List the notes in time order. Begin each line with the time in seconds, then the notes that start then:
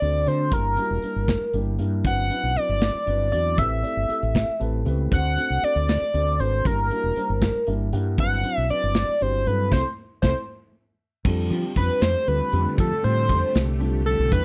Already playing: D5
0.01 D2 A3 C4 D4 F#4 C5, closed hi-hat
0.26 D3 A3 C4 D4 F#4 C5, closed hi-hat
0.51 G1 G3 A#3 D4 E4 A#4, kick, closed hi-hat
0.77 G3 A#3 D4 E4 F#4, closed hi-hat
0.90 E1
1.02 G3 A#3 D4 E4 A#4, closed hi-hat
1.16 G1
1.28 kick, snare, closed hi-hat
1.53 G1 G3 A#3 D4 E4 G4, closed hi-hat
1.78 G2 G3 A#3 D4 E4 A#4, closed hi-hat
2.05 G1 F#3 C4 D4 E4 B4 F#5, kick, closed hi-hat
2.30 F#3 C4 D4 E4 B4, closed hi-hat
2.43 B1
2.55 F#3 C4 D4 E4 B4 D5, muted fretless electric bass stroke, closed hi-hat
2.69 G1
2.81 snare, closed hi-hat
2.95 muted fretless electric bass stroke
3.06 G1 F#3 C4 D4 E4 B4, closed hi-hat
3.32 E2 F#3 C4 D4 E4 F#4 D5, closed hi-hat
3.57 A1 A3 C4 E4 G4 B4 E5, kick, closed hi-hat
3.83 A3 C4 E4 G4 D5, closed hi-hat
3.97 G1
4.08 A3 C4 E4 G4 A4, closed hi-hat
4.22 A1
4.35 kick, snare, closed hi-hat
4.60 A1 A3 C4 E4 G4 B4 A5, closed hi-hat
4.85 C#2 A3 C4 E4 G4 B4 E5, closed hi-hat
5.11 D2 A3 C4 D4 F#4 C5 F#5, kick, closed hi-hat
5.36 A3 C4 D4 F#4 C5, closed hi-hat
5.50 C2
5.62 A3 C4 D4 F#4 C5 D5, closed hi-hat
5.75 D2
5.89 snare, closed hi-hat
6.13 D2 A3 C4 D4 F#4 C5, closed hi-hat
6.39 G#1 A3 C4 D4 F#4 B4 C5, closed hi-hat
6.65 G1 G3 A#3 D4 E4 A#4, kick, closed hi-hat
6.91 G3 A#3 D4 E4 F#4, closed hi-hat
7.03 E1
7.16 G3 A#3 D4 E4 C5, muted fretless electric bass stroke, closed hi-hat
7.29 G1
7.42 kick, snare, closed hi-hat
7.67 G1 G3 A#3 D4 E4 A#4 E5, closed hi-hat
7.93 G2 G3 A#3 D4 E4 A#4 F#5, closed hi-hat
8.18 G1 F#3 C4 D4 E4 B4 F#5, kick, closed hi-hat
8.43 F#3 C4 D4 E4 C5, closed hi-hat
8.57 B1
8.69 F#3 C4 D4 E4 B4 D5, muted fretless electric bass stroke, closed hi-hat
8.83 G1
8.94 snare, closed hi-hat
9.20 G1 F#3 C4 D4 E4 G4 C5, closed hi-hat
9.46 G2 F#3 C4 D4 E4 A4 B4, closed hi-hat
9.71 C2 A3 C4 E4 C5, kick, snare
10.22 C2 A3 C4 E4 C5, kick, snare
11.25 F2 D3 G3 A3 C4 D4 F4 G4 A4, kick, crash
11.49 F3 G3 C4 D4 F4 G4, closed hi-hat
11.75 F2 G3 C4 D4 F4 B4, kick, closed hi-hat
12.01 F2 C5, snare, closed hi-hat
12.27 D2 G3 C4 D4 F4 A4 B4, closed hi-hat
12.52 F2 G3 C4 D4 F4 G4, closed hi-hat
12.78 F3 A4, kick, closed hi-hat
12.91 muted fretless electric bass stroke
13.03 A2 G3 C4 D4 F4 A4 C5, closed hi-hat
13.28 F2 G3 C4 D4 F4 A4, kick, closed hi-hat
13.55 C2, snare, closed hi-hat
13.79 G3 C4 D4 F4 A4, closed hi-hat
14.05 G3 C4 D4 F4 A4, closed hi-hat
14.19 B1
14.31 E2 E3 G3 B3 D4 E4 B4, kick, closed hi-hat